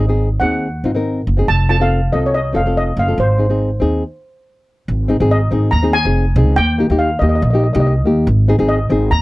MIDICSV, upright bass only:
0, 0, Header, 1, 2, 480
1, 0, Start_track
1, 0, Tempo, 424628
1, 1666, Time_signature, 4, 2, 24, 8
1, 10421, End_track
2, 0, Start_track
2, 0, Title_t, "Upright bass"
2, 0, Program_c, 0, 32
2, 0, Note_on_c, 0, 32, 87
2, 411, Note_off_c, 0, 32, 0
2, 461, Note_on_c, 0, 39, 83
2, 908, Note_off_c, 0, 39, 0
2, 946, Note_on_c, 0, 32, 72
2, 1392, Note_off_c, 0, 32, 0
2, 1436, Note_on_c, 0, 30, 86
2, 1654, Note_off_c, 0, 30, 0
2, 1674, Note_on_c, 0, 29, 89
2, 2348, Note_off_c, 0, 29, 0
2, 2406, Note_on_c, 0, 36, 70
2, 2844, Note_off_c, 0, 36, 0
2, 2877, Note_on_c, 0, 29, 71
2, 3320, Note_off_c, 0, 29, 0
2, 3353, Note_on_c, 0, 30, 88
2, 3576, Note_off_c, 0, 30, 0
2, 3592, Note_on_c, 0, 32, 87
2, 4268, Note_off_c, 0, 32, 0
2, 4314, Note_on_c, 0, 39, 70
2, 4537, Note_off_c, 0, 39, 0
2, 5519, Note_on_c, 0, 32, 85
2, 5857, Note_off_c, 0, 32, 0
2, 5882, Note_on_c, 0, 32, 84
2, 6208, Note_off_c, 0, 32, 0
2, 6235, Note_on_c, 0, 32, 76
2, 6456, Note_off_c, 0, 32, 0
2, 6470, Note_on_c, 0, 39, 92
2, 6811, Note_off_c, 0, 39, 0
2, 6840, Note_on_c, 0, 29, 82
2, 7186, Note_on_c, 0, 37, 104
2, 7203, Note_off_c, 0, 29, 0
2, 7410, Note_off_c, 0, 37, 0
2, 7434, Note_on_c, 0, 39, 104
2, 7772, Note_off_c, 0, 39, 0
2, 7797, Note_on_c, 0, 39, 83
2, 8123, Note_off_c, 0, 39, 0
2, 8154, Note_on_c, 0, 39, 77
2, 8373, Note_off_c, 0, 39, 0
2, 8390, Note_on_c, 0, 34, 89
2, 8728, Note_off_c, 0, 34, 0
2, 8756, Note_on_c, 0, 36, 95
2, 9108, Note_off_c, 0, 36, 0
2, 9108, Note_on_c, 0, 39, 109
2, 9328, Note_off_c, 0, 39, 0
2, 9348, Note_on_c, 0, 32, 96
2, 9685, Note_off_c, 0, 32, 0
2, 9708, Note_on_c, 0, 32, 83
2, 10035, Note_off_c, 0, 32, 0
2, 10061, Note_on_c, 0, 32, 84
2, 10283, Note_off_c, 0, 32, 0
2, 10305, Note_on_c, 0, 39, 89
2, 10421, Note_off_c, 0, 39, 0
2, 10421, End_track
0, 0, End_of_file